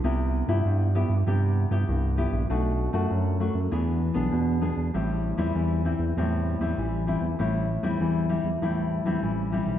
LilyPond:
<<
  \new Staff \with { instrumentName = "Nylon-string guitar" } { \time 4/4 \key a \minor \tempo 4 = 98 << { <b e' g'>8. <b e' g'>8. <b e' g'>16 r16 <b e' g'>8. <b e' g'>8. <b e' g'>8 | <a d' fis'>8. <a d' fis'>8. <a d' fis'>16 r16 <b d' gis'>8 r16 <b d' gis'>8. <b d' gis'>8 | <g c' e'>8. <g c' e'>8. <g c' e'>16 r16 <g c' e'>8. <g c' e'>8. <g c' e'>16 r16 | <g c' e'>8 r16 <g c' e'>8. <g c' e'>16 r16 <g c' e'>8. <g c' e'>8. <g c' e'>8 | } \\ { c4 g,4 c4 g,4 | b,4 fis,4 e4 b,4 | a,4 e4 a,4 e4 | a,4 e4 a,4 e4 | } >> }
  \new Staff \with { instrumentName = "Analog synth bass" } { \clef bass \time 4/4 \key a \minor c,8. g,16 g,8. g,16 g,8. g,16 c,8. bes,,16 | b,,8. fis,16 fis,8. fis,16 e,8. b,,16 e,8. e,16 | a,,8. e,16 e,8. e,16 e,8. e,16 a,,8. e,16 | a,,8. e,16 e,8. e,16 e,8. e,16 a,,8. b,,16 | }
>>